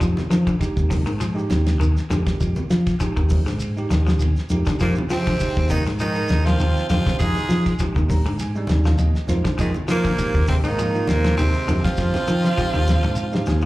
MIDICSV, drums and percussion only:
0, 0, Header, 1, 3, 480
1, 0, Start_track
1, 0, Tempo, 598205
1, 14, Time_signature, 4, 2, 24, 8
1, 10958, End_track
2, 0, Start_track
2, 0, Title_t, "Shekere"
2, 10, Note_on_c, 9, 82, 89
2, 90, Note_off_c, 9, 82, 0
2, 143, Note_on_c, 9, 82, 30
2, 223, Note_off_c, 9, 82, 0
2, 251, Note_on_c, 9, 82, 71
2, 331, Note_off_c, 9, 82, 0
2, 381, Note_on_c, 9, 82, 30
2, 461, Note_off_c, 9, 82, 0
2, 499, Note_on_c, 9, 82, 91
2, 579, Note_off_c, 9, 82, 0
2, 620, Note_on_c, 9, 82, 30
2, 700, Note_off_c, 9, 82, 0
2, 730, Note_on_c, 9, 82, 74
2, 810, Note_off_c, 9, 82, 0
2, 852, Note_on_c, 9, 82, 30
2, 933, Note_off_c, 9, 82, 0
2, 969, Note_on_c, 9, 82, 88
2, 1049, Note_off_c, 9, 82, 0
2, 1109, Note_on_c, 9, 82, 31
2, 1190, Note_off_c, 9, 82, 0
2, 1209, Note_on_c, 9, 82, 66
2, 1289, Note_off_c, 9, 82, 0
2, 1344, Note_on_c, 9, 82, 33
2, 1425, Note_off_c, 9, 82, 0
2, 1460, Note_on_c, 9, 82, 88
2, 1540, Note_off_c, 9, 82, 0
2, 1580, Note_on_c, 9, 82, 27
2, 1661, Note_off_c, 9, 82, 0
2, 1693, Note_on_c, 9, 82, 72
2, 1773, Note_off_c, 9, 82, 0
2, 1824, Note_on_c, 9, 82, 31
2, 1905, Note_off_c, 9, 82, 0
2, 1931, Note_on_c, 9, 82, 89
2, 2011, Note_off_c, 9, 82, 0
2, 2053, Note_on_c, 9, 82, 30
2, 2134, Note_off_c, 9, 82, 0
2, 2171, Note_on_c, 9, 82, 72
2, 2252, Note_off_c, 9, 82, 0
2, 2298, Note_on_c, 9, 82, 29
2, 2379, Note_off_c, 9, 82, 0
2, 2408, Note_on_c, 9, 82, 104
2, 2488, Note_off_c, 9, 82, 0
2, 2540, Note_on_c, 9, 82, 30
2, 2621, Note_off_c, 9, 82, 0
2, 2644, Note_on_c, 9, 82, 73
2, 2724, Note_off_c, 9, 82, 0
2, 2780, Note_on_c, 9, 82, 32
2, 2860, Note_off_c, 9, 82, 0
2, 2886, Note_on_c, 9, 82, 93
2, 2966, Note_off_c, 9, 82, 0
2, 3028, Note_on_c, 9, 82, 35
2, 3108, Note_off_c, 9, 82, 0
2, 3133, Note_on_c, 9, 82, 72
2, 3214, Note_off_c, 9, 82, 0
2, 3260, Note_on_c, 9, 82, 33
2, 3340, Note_off_c, 9, 82, 0
2, 3365, Note_on_c, 9, 82, 81
2, 3445, Note_off_c, 9, 82, 0
2, 3501, Note_on_c, 9, 82, 27
2, 3581, Note_off_c, 9, 82, 0
2, 3607, Note_on_c, 9, 82, 73
2, 3688, Note_off_c, 9, 82, 0
2, 3735, Note_on_c, 9, 82, 33
2, 3815, Note_off_c, 9, 82, 0
2, 3848, Note_on_c, 9, 82, 88
2, 3928, Note_off_c, 9, 82, 0
2, 3972, Note_on_c, 9, 82, 33
2, 4053, Note_off_c, 9, 82, 0
2, 4090, Note_on_c, 9, 82, 73
2, 4170, Note_off_c, 9, 82, 0
2, 4225, Note_on_c, 9, 82, 32
2, 4305, Note_off_c, 9, 82, 0
2, 4331, Note_on_c, 9, 82, 98
2, 4411, Note_off_c, 9, 82, 0
2, 4457, Note_on_c, 9, 82, 29
2, 4537, Note_off_c, 9, 82, 0
2, 4567, Note_on_c, 9, 82, 71
2, 4648, Note_off_c, 9, 82, 0
2, 4698, Note_on_c, 9, 82, 34
2, 4779, Note_off_c, 9, 82, 0
2, 4809, Note_on_c, 9, 82, 90
2, 4890, Note_off_c, 9, 82, 0
2, 4934, Note_on_c, 9, 82, 33
2, 5015, Note_off_c, 9, 82, 0
2, 5041, Note_on_c, 9, 82, 75
2, 5122, Note_off_c, 9, 82, 0
2, 5183, Note_on_c, 9, 82, 34
2, 5263, Note_off_c, 9, 82, 0
2, 5291, Note_on_c, 9, 82, 92
2, 5371, Note_off_c, 9, 82, 0
2, 5427, Note_on_c, 9, 82, 28
2, 5507, Note_off_c, 9, 82, 0
2, 5531, Note_on_c, 9, 82, 75
2, 5611, Note_off_c, 9, 82, 0
2, 5665, Note_on_c, 9, 82, 33
2, 5745, Note_off_c, 9, 82, 0
2, 5776, Note_on_c, 9, 82, 92
2, 5856, Note_off_c, 9, 82, 0
2, 5907, Note_on_c, 9, 82, 31
2, 5987, Note_off_c, 9, 82, 0
2, 6016, Note_on_c, 9, 82, 73
2, 6096, Note_off_c, 9, 82, 0
2, 6148, Note_on_c, 9, 82, 26
2, 6228, Note_off_c, 9, 82, 0
2, 6251, Note_on_c, 9, 82, 102
2, 6331, Note_off_c, 9, 82, 0
2, 6393, Note_on_c, 9, 82, 28
2, 6473, Note_off_c, 9, 82, 0
2, 6499, Note_on_c, 9, 82, 75
2, 6580, Note_off_c, 9, 82, 0
2, 6629, Note_on_c, 9, 82, 32
2, 6709, Note_off_c, 9, 82, 0
2, 6734, Note_on_c, 9, 82, 97
2, 6814, Note_off_c, 9, 82, 0
2, 6864, Note_on_c, 9, 82, 36
2, 6944, Note_off_c, 9, 82, 0
2, 6974, Note_on_c, 9, 82, 64
2, 7054, Note_off_c, 9, 82, 0
2, 7097, Note_on_c, 9, 82, 27
2, 7177, Note_off_c, 9, 82, 0
2, 7207, Note_on_c, 9, 82, 86
2, 7287, Note_off_c, 9, 82, 0
2, 7345, Note_on_c, 9, 82, 26
2, 7425, Note_off_c, 9, 82, 0
2, 7450, Note_on_c, 9, 82, 71
2, 7530, Note_off_c, 9, 82, 0
2, 7587, Note_on_c, 9, 82, 35
2, 7668, Note_off_c, 9, 82, 0
2, 7692, Note_on_c, 9, 82, 89
2, 7772, Note_off_c, 9, 82, 0
2, 7821, Note_on_c, 9, 82, 34
2, 7901, Note_off_c, 9, 82, 0
2, 7930, Note_on_c, 9, 82, 73
2, 8010, Note_off_c, 9, 82, 0
2, 8058, Note_on_c, 9, 82, 26
2, 8139, Note_off_c, 9, 82, 0
2, 8172, Note_on_c, 9, 82, 100
2, 8252, Note_off_c, 9, 82, 0
2, 8305, Note_on_c, 9, 82, 31
2, 8386, Note_off_c, 9, 82, 0
2, 8403, Note_on_c, 9, 82, 77
2, 8483, Note_off_c, 9, 82, 0
2, 8544, Note_on_c, 9, 82, 31
2, 8624, Note_off_c, 9, 82, 0
2, 8659, Note_on_c, 9, 82, 103
2, 8739, Note_off_c, 9, 82, 0
2, 8788, Note_on_c, 9, 82, 33
2, 8868, Note_off_c, 9, 82, 0
2, 8901, Note_on_c, 9, 82, 65
2, 8981, Note_off_c, 9, 82, 0
2, 9024, Note_on_c, 9, 82, 32
2, 9104, Note_off_c, 9, 82, 0
2, 9137, Note_on_c, 9, 82, 83
2, 9218, Note_off_c, 9, 82, 0
2, 9257, Note_on_c, 9, 82, 28
2, 9337, Note_off_c, 9, 82, 0
2, 9375, Note_on_c, 9, 82, 71
2, 9455, Note_off_c, 9, 82, 0
2, 9495, Note_on_c, 9, 82, 33
2, 9575, Note_off_c, 9, 82, 0
2, 9604, Note_on_c, 9, 82, 84
2, 9684, Note_off_c, 9, 82, 0
2, 9735, Note_on_c, 9, 82, 32
2, 9815, Note_off_c, 9, 82, 0
2, 9847, Note_on_c, 9, 82, 75
2, 9927, Note_off_c, 9, 82, 0
2, 9982, Note_on_c, 9, 82, 30
2, 10062, Note_off_c, 9, 82, 0
2, 10089, Note_on_c, 9, 82, 92
2, 10169, Note_off_c, 9, 82, 0
2, 10224, Note_on_c, 9, 82, 30
2, 10304, Note_off_c, 9, 82, 0
2, 10328, Note_on_c, 9, 82, 74
2, 10408, Note_off_c, 9, 82, 0
2, 10455, Note_on_c, 9, 82, 31
2, 10536, Note_off_c, 9, 82, 0
2, 10556, Note_on_c, 9, 82, 99
2, 10636, Note_off_c, 9, 82, 0
2, 10689, Note_on_c, 9, 82, 33
2, 10769, Note_off_c, 9, 82, 0
2, 10800, Note_on_c, 9, 82, 68
2, 10880, Note_off_c, 9, 82, 0
2, 10923, Note_on_c, 9, 82, 29
2, 10958, Note_off_c, 9, 82, 0
2, 10958, End_track
3, 0, Start_track
3, 0, Title_t, "Drums"
3, 8, Note_on_c, 9, 36, 90
3, 10, Note_on_c, 9, 53, 56
3, 13, Note_on_c, 9, 38, 30
3, 89, Note_off_c, 9, 36, 0
3, 91, Note_off_c, 9, 53, 0
3, 94, Note_off_c, 9, 38, 0
3, 136, Note_on_c, 9, 63, 92
3, 142, Note_on_c, 9, 38, 30
3, 217, Note_off_c, 9, 63, 0
3, 223, Note_off_c, 9, 38, 0
3, 250, Note_on_c, 9, 53, 56
3, 253, Note_on_c, 9, 38, 73
3, 330, Note_off_c, 9, 53, 0
3, 333, Note_off_c, 9, 38, 0
3, 377, Note_on_c, 9, 36, 67
3, 378, Note_on_c, 9, 53, 55
3, 457, Note_off_c, 9, 36, 0
3, 458, Note_off_c, 9, 53, 0
3, 488, Note_on_c, 9, 36, 70
3, 489, Note_on_c, 9, 53, 51
3, 492, Note_on_c, 9, 38, 28
3, 568, Note_off_c, 9, 36, 0
3, 569, Note_off_c, 9, 53, 0
3, 572, Note_off_c, 9, 38, 0
3, 613, Note_on_c, 9, 63, 77
3, 617, Note_on_c, 9, 36, 73
3, 694, Note_off_c, 9, 63, 0
3, 697, Note_off_c, 9, 36, 0
3, 725, Note_on_c, 9, 64, 93
3, 728, Note_on_c, 9, 36, 69
3, 730, Note_on_c, 9, 46, 62
3, 733, Note_on_c, 9, 38, 29
3, 806, Note_off_c, 9, 64, 0
3, 809, Note_off_c, 9, 36, 0
3, 811, Note_off_c, 9, 46, 0
3, 814, Note_off_c, 9, 38, 0
3, 857, Note_on_c, 9, 53, 50
3, 857, Note_on_c, 9, 63, 33
3, 937, Note_off_c, 9, 63, 0
3, 938, Note_off_c, 9, 53, 0
3, 964, Note_on_c, 9, 63, 35
3, 968, Note_on_c, 9, 53, 62
3, 972, Note_on_c, 9, 38, 33
3, 1044, Note_off_c, 9, 63, 0
3, 1049, Note_off_c, 9, 53, 0
3, 1052, Note_off_c, 9, 38, 0
3, 1203, Note_on_c, 9, 63, 98
3, 1207, Note_on_c, 9, 53, 54
3, 1210, Note_on_c, 9, 38, 74
3, 1283, Note_off_c, 9, 63, 0
3, 1287, Note_off_c, 9, 53, 0
3, 1291, Note_off_c, 9, 38, 0
3, 1336, Note_on_c, 9, 53, 49
3, 1339, Note_on_c, 9, 38, 62
3, 1416, Note_off_c, 9, 53, 0
3, 1419, Note_off_c, 9, 38, 0
3, 1449, Note_on_c, 9, 63, 92
3, 1450, Note_on_c, 9, 53, 53
3, 1530, Note_off_c, 9, 53, 0
3, 1530, Note_off_c, 9, 63, 0
3, 1581, Note_on_c, 9, 38, 30
3, 1662, Note_off_c, 9, 38, 0
3, 1683, Note_on_c, 9, 64, 84
3, 1692, Note_on_c, 9, 53, 56
3, 1695, Note_on_c, 9, 38, 31
3, 1763, Note_off_c, 9, 64, 0
3, 1772, Note_off_c, 9, 53, 0
3, 1775, Note_off_c, 9, 38, 0
3, 1810, Note_on_c, 9, 63, 67
3, 1818, Note_on_c, 9, 36, 73
3, 1818, Note_on_c, 9, 53, 51
3, 1821, Note_on_c, 9, 38, 67
3, 1891, Note_off_c, 9, 63, 0
3, 1898, Note_off_c, 9, 36, 0
3, 1898, Note_off_c, 9, 53, 0
3, 1902, Note_off_c, 9, 38, 0
3, 1929, Note_on_c, 9, 53, 57
3, 1931, Note_on_c, 9, 36, 91
3, 1932, Note_on_c, 9, 38, 28
3, 2009, Note_off_c, 9, 53, 0
3, 2011, Note_off_c, 9, 36, 0
3, 2013, Note_off_c, 9, 38, 0
3, 2056, Note_on_c, 9, 63, 92
3, 2136, Note_off_c, 9, 63, 0
3, 2171, Note_on_c, 9, 53, 54
3, 2175, Note_on_c, 9, 38, 75
3, 2252, Note_off_c, 9, 53, 0
3, 2255, Note_off_c, 9, 38, 0
3, 2300, Note_on_c, 9, 53, 57
3, 2301, Note_on_c, 9, 36, 72
3, 2303, Note_on_c, 9, 38, 31
3, 2380, Note_off_c, 9, 53, 0
3, 2381, Note_off_c, 9, 36, 0
3, 2383, Note_off_c, 9, 38, 0
3, 2412, Note_on_c, 9, 53, 51
3, 2413, Note_on_c, 9, 36, 66
3, 2415, Note_on_c, 9, 38, 28
3, 2492, Note_off_c, 9, 53, 0
3, 2493, Note_off_c, 9, 36, 0
3, 2496, Note_off_c, 9, 38, 0
3, 2542, Note_on_c, 9, 63, 86
3, 2544, Note_on_c, 9, 36, 71
3, 2622, Note_off_c, 9, 63, 0
3, 2624, Note_off_c, 9, 36, 0
3, 2655, Note_on_c, 9, 36, 76
3, 2656, Note_on_c, 9, 46, 70
3, 2659, Note_on_c, 9, 63, 85
3, 2659, Note_on_c, 9, 64, 89
3, 2735, Note_off_c, 9, 36, 0
3, 2737, Note_off_c, 9, 46, 0
3, 2739, Note_off_c, 9, 63, 0
3, 2739, Note_off_c, 9, 64, 0
3, 2787, Note_on_c, 9, 63, 32
3, 2792, Note_on_c, 9, 53, 50
3, 2795, Note_on_c, 9, 38, 31
3, 2867, Note_off_c, 9, 63, 0
3, 2872, Note_off_c, 9, 53, 0
3, 2876, Note_off_c, 9, 38, 0
3, 2902, Note_on_c, 9, 63, 33
3, 2905, Note_on_c, 9, 53, 60
3, 2982, Note_off_c, 9, 63, 0
3, 2985, Note_off_c, 9, 53, 0
3, 3136, Note_on_c, 9, 63, 86
3, 3141, Note_on_c, 9, 53, 52
3, 3144, Note_on_c, 9, 38, 67
3, 3216, Note_off_c, 9, 63, 0
3, 3221, Note_off_c, 9, 53, 0
3, 3225, Note_off_c, 9, 38, 0
3, 3277, Note_on_c, 9, 38, 72
3, 3357, Note_off_c, 9, 38, 0
3, 3380, Note_on_c, 9, 63, 90
3, 3386, Note_on_c, 9, 53, 58
3, 3460, Note_off_c, 9, 63, 0
3, 3466, Note_off_c, 9, 53, 0
3, 3515, Note_on_c, 9, 38, 30
3, 3595, Note_off_c, 9, 38, 0
3, 3619, Note_on_c, 9, 64, 76
3, 3621, Note_on_c, 9, 53, 61
3, 3699, Note_off_c, 9, 64, 0
3, 3701, Note_off_c, 9, 53, 0
3, 3746, Note_on_c, 9, 53, 58
3, 3748, Note_on_c, 9, 36, 79
3, 3749, Note_on_c, 9, 38, 64
3, 3752, Note_on_c, 9, 63, 74
3, 3826, Note_off_c, 9, 53, 0
3, 3828, Note_off_c, 9, 36, 0
3, 3829, Note_off_c, 9, 38, 0
3, 3833, Note_off_c, 9, 63, 0
3, 3858, Note_on_c, 9, 53, 60
3, 3860, Note_on_c, 9, 36, 94
3, 3861, Note_on_c, 9, 38, 33
3, 3938, Note_off_c, 9, 53, 0
3, 3940, Note_off_c, 9, 36, 0
3, 3942, Note_off_c, 9, 38, 0
3, 3999, Note_on_c, 9, 63, 98
3, 4079, Note_off_c, 9, 63, 0
3, 4102, Note_on_c, 9, 53, 54
3, 4106, Note_on_c, 9, 38, 74
3, 4183, Note_off_c, 9, 53, 0
3, 4186, Note_off_c, 9, 38, 0
3, 4227, Note_on_c, 9, 53, 62
3, 4230, Note_on_c, 9, 36, 70
3, 4230, Note_on_c, 9, 38, 29
3, 4307, Note_off_c, 9, 53, 0
3, 4310, Note_off_c, 9, 36, 0
3, 4310, Note_off_c, 9, 38, 0
3, 4341, Note_on_c, 9, 36, 72
3, 4341, Note_on_c, 9, 53, 56
3, 4344, Note_on_c, 9, 38, 27
3, 4421, Note_off_c, 9, 53, 0
3, 4422, Note_off_c, 9, 36, 0
3, 4425, Note_off_c, 9, 38, 0
3, 4469, Note_on_c, 9, 36, 80
3, 4474, Note_on_c, 9, 63, 88
3, 4549, Note_off_c, 9, 36, 0
3, 4554, Note_off_c, 9, 63, 0
3, 4576, Note_on_c, 9, 64, 88
3, 4578, Note_on_c, 9, 46, 63
3, 4581, Note_on_c, 9, 36, 67
3, 4656, Note_off_c, 9, 64, 0
3, 4658, Note_off_c, 9, 46, 0
3, 4661, Note_off_c, 9, 36, 0
3, 4711, Note_on_c, 9, 63, 35
3, 4712, Note_on_c, 9, 53, 57
3, 4715, Note_on_c, 9, 38, 31
3, 4791, Note_off_c, 9, 63, 0
3, 4792, Note_off_c, 9, 53, 0
3, 4795, Note_off_c, 9, 38, 0
3, 4823, Note_on_c, 9, 53, 61
3, 4825, Note_on_c, 9, 63, 36
3, 4903, Note_off_c, 9, 53, 0
3, 4906, Note_off_c, 9, 63, 0
3, 5057, Note_on_c, 9, 63, 100
3, 5058, Note_on_c, 9, 53, 47
3, 5061, Note_on_c, 9, 38, 64
3, 5137, Note_off_c, 9, 63, 0
3, 5138, Note_off_c, 9, 53, 0
3, 5141, Note_off_c, 9, 38, 0
3, 5188, Note_on_c, 9, 53, 49
3, 5188, Note_on_c, 9, 64, 74
3, 5192, Note_on_c, 9, 38, 60
3, 5268, Note_off_c, 9, 64, 0
3, 5269, Note_off_c, 9, 53, 0
3, 5272, Note_off_c, 9, 38, 0
3, 5296, Note_on_c, 9, 63, 85
3, 5305, Note_on_c, 9, 53, 53
3, 5377, Note_off_c, 9, 63, 0
3, 5385, Note_off_c, 9, 53, 0
3, 5440, Note_on_c, 9, 38, 27
3, 5520, Note_off_c, 9, 38, 0
3, 5537, Note_on_c, 9, 64, 92
3, 5546, Note_on_c, 9, 53, 53
3, 5549, Note_on_c, 9, 38, 31
3, 5617, Note_off_c, 9, 64, 0
3, 5626, Note_off_c, 9, 53, 0
3, 5630, Note_off_c, 9, 38, 0
3, 5658, Note_on_c, 9, 63, 80
3, 5671, Note_on_c, 9, 36, 80
3, 5674, Note_on_c, 9, 53, 51
3, 5678, Note_on_c, 9, 38, 66
3, 5739, Note_off_c, 9, 63, 0
3, 5751, Note_off_c, 9, 36, 0
3, 5755, Note_off_c, 9, 53, 0
3, 5758, Note_off_c, 9, 38, 0
3, 5780, Note_on_c, 9, 53, 54
3, 5781, Note_on_c, 9, 36, 90
3, 5860, Note_off_c, 9, 53, 0
3, 5861, Note_off_c, 9, 36, 0
3, 5897, Note_on_c, 9, 63, 94
3, 5915, Note_on_c, 9, 38, 31
3, 5977, Note_off_c, 9, 63, 0
3, 5995, Note_off_c, 9, 38, 0
3, 6022, Note_on_c, 9, 53, 53
3, 6025, Note_on_c, 9, 38, 69
3, 6102, Note_off_c, 9, 53, 0
3, 6105, Note_off_c, 9, 38, 0
3, 6148, Note_on_c, 9, 36, 67
3, 6150, Note_on_c, 9, 53, 57
3, 6153, Note_on_c, 9, 38, 29
3, 6228, Note_off_c, 9, 36, 0
3, 6230, Note_off_c, 9, 53, 0
3, 6233, Note_off_c, 9, 38, 0
3, 6259, Note_on_c, 9, 36, 66
3, 6262, Note_on_c, 9, 53, 50
3, 6265, Note_on_c, 9, 38, 31
3, 6340, Note_off_c, 9, 36, 0
3, 6342, Note_off_c, 9, 53, 0
3, 6345, Note_off_c, 9, 38, 0
3, 6378, Note_on_c, 9, 63, 93
3, 6388, Note_on_c, 9, 36, 76
3, 6458, Note_off_c, 9, 63, 0
3, 6468, Note_off_c, 9, 36, 0
3, 6491, Note_on_c, 9, 64, 99
3, 6498, Note_on_c, 9, 36, 73
3, 6498, Note_on_c, 9, 46, 70
3, 6571, Note_off_c, 9, 64, 0
3, 6578, Note_off_c, 9, 36, 0
3, 6578, Note_off_c, 9, 46, 0
3, 6614, Note_on_c, 9, 63, 30
3, 6630, Note_on_c, 9, 53, 50
3, 6694, Note_off_c, 9, 63, 0
3, 6710, Note_off_c, 9, 53, 0
3, 6736, Note_on_c, 9, 53, 61
3, 6739, Note_on_c, 9, 38, 32
3, 6816, Note_off_c, 9, 53, 0
3, 6819, Note_off_c, 9, 38, 0
3, 6958, Note_on_c, 9, 63, 103
3, 6975, Note_on_c, 9, 53, 49
3, 6978, Note_on_c, 9, 38, 72
3, 7039, Note_off_c, 9, 63, 0
3, 7055, Note_off_c, 9, 53, 0
3, 7058, Note_off_c, 9, 38, 0
3, 7100, Note_on_c, 9, 64, 73
3, 7104, Note_on_c, 9, 38, 72
3, 7180, Note_off_c, 9, 64, 0
3, 7184, Note_off_c, 9, 38, 0
3, 7203, Note_on_c, 9, 63, 88
3, 7210, Note_on_c, 9, 53, 49
3, 7283, Note_off_c, 9, 63, 0
3, 7290, Note_off_c, 9, 53, 0
3, 7345, Note_on_c, 9, 38, 29
3, 7425, Note_off_c, 9, 38, 0
3, 7439, Note_on_c, 9, 64, 82
3, 7456, Note_on_c, 9, 53, 57
3, 7460, Note_on_c, 9, 38, 31
3, 7519, Note_off_c, 9, 64, 0
3, 7537, Note_off_c, 9, 53, 0
3, 7540, Note_off_c, 9, 38, 0
3, 7580, Note_on_c, 9, 53, 51
3, 7583, Note_on_c, 9, 36, 76
3, 7583, Note_on_c, 9, 38, 77
3, 7660, Note_off_c, 9, 53, 0
3, 7663, Note_off_c, 9, 36, 0
3, 7664, Note_off_c, 9, 38, 0
3, 7686, Note_on_c, 9, 63, 29
3, 7692, Note_on_c, 9, 53, 60
3, 7694, Note_on_c, 9, 36, 91
3, 7766, Note_off_c, 9, 63, 0
3, 7772, Note_off_c, 9, 53, 0
3, 7774, Note_off_c, 9, 36, 0
3, 7819, Note_on_c, 9, 63, 91
3, 7899, Note_off_c, 9, 63, 0
3, 7932, Note_on_c, 9, 53, 55
3, 7935, Note_on_c, 9, 38, 68
3, 8012, Note_off_c, 9, 53, 0
3, 8015, Note_off_c, 9, 38, 0
3, 8061, Note_on_c, 9, 53, 54
3, 8063, Note_on_c, 9, 36, 75
3, 8064, Note_on_c, 9, 38, 30
3, 8141, Note_off_c, 9, 53, 0
3, 8143, Note_off_c, 9, 36, 0
3, 8144, Note_off_c, 9, 38, 0
3, 8173, Note_on_c, 9, 53, 56
3, 8174, Note_on_c, 9, 36, 67
3, 8253, Note_off_c, 9, 53, 0
3, 8254, Note_off_c, 9, 36, 0
3, 8295, Note_on_c, 9, 63, 93
3, 8304, Note_on_c, 9, 36, 74
3, 8375, Note_off_c, 9, 63, 0
3, 8384, Note_off_c, 9, 36, 0
3, 8409, Note_on_c, 9, 64, 93
3, 8415, Note_on_c, 9, 36, 78
3, 8416, Note_on_c, 9, 46, 68
3, 8490, Note_off_c, 9, 64, 0
3, 8495, Note_off_c, 9, 36, 0
3, 8496, Note_off_c, 9, 46, 0
3, 8536, Note_on_c, 9, 63, 34
3, 8544, Note_on_c, 9, 53, 56
3, 8616, Note_off_c, 9, 63, 0
3, 8624, Note_off_c, 9, 53, 0
3, 8657, Note_on_c, 9, 53, 67
3, 8737, Note_off_c, 9, 53, 0
3, 8885, Note_on_c, 9, 63, 105
3, 8896, Note_on_c, 9, 53, 56
3, 8899, Note_on_c, 9, 38, 67
3, 8965, Note_off_c, 9, 63, 0
3, 8976, Note_off_c, 9, 53, 0
3, 8979, Note_off_c, 9, 38, 0
3, 9022, Note_on_c, 9, 53, 52
3, 9025, Note_on_c, 9, 38, 68
3, 9102, Note_off_c, 9, 53, 0
3, 9105, Note_off_c, 9, 38, 0
3, 9129, Note_on_c, 9, 63, 84
3, 9138, Note_on_c, 9, 53, 51
3, 9209, Note_off_c, 9, 63, 0
3, 9218, Note_off_c, 9, 53, 0
3, 9368, Note_on_c, 9, 64, 86
3, 9377, Note_on_c, 9, 53, 61
3, 9448, Note_off_c, 9, 64, 0
3, 9457, Note_off_c, 9, 53, 0
3, 9504, Note_on_c, 9, 36, 74
3, 9510, Note_on_c, 9, 53, 54
3, 9513, Note_on_c, 9, 38, 70
3, 9585, Note_off_c, 9, 36, 0
3, 9590, Note_off_c, 9, 53, 0
3, 9593, Note_off_c, 9, 38, 0
3, 9615, Note_on_c, 9, 36, 98
3, 9619, Note_on_c, 9, 38, 58
3, 9695, Note_off_c, 9, 36, 0
3, 9700, Note_off_c, 9, 38, 0
3, 9740, Note_on_c, 9, 63, 106
3, 9749, Note_on_c, 9, 38, 55
3, 9820, Note_off_c, 9, 63, 0
3, 9829, Note_off_c, 9, 38, 0
3, 9987, Note_on_c, 9, 38, 60
3, 10067, Note_off_c, 9, 38, 0
3, 10095, Note_on_c, 9, 36, 66
3, 10175, Note_off_c, 9, 36, 0
3, 10219, Note_on_c, 9, 63, 88
3, 10299, Note_off_c, 9, 63, 0
3, 10328, Note_on_c, 9, 63, 87
3, 10328, Note_on_c, 9, 64, 89
3, 10342, Note_on_c, 9, 38, 69
3, 10408, Note_off_c, 9, 63, 0
3, 10408, Note_off_c, 9, 64, 0
3, 10422, Note_off_c, 9, 38, 0
3, 10467, Note_on_c, 9, 47, 60
3, 10547, Note_off_c, 9, 47, 0
3, 10570, Note_on_c, 9, 63, 33
3, 10650, Note_off_c, 9, 63, 0
3, 10711, Note_on_c, 9, 38, 73
3, 10791, Note_off_c, 9, 38, 0
3, 10806, Note_on_c, 9, 63, 78
3, 10818, Note_on_c, 9, 38, 76
3, 10887, Note_off_c, 9, 63, 0
3, 10899, Note_off_c, 9, 38, 0
3, 10958, End_track
0, 0, End_of_file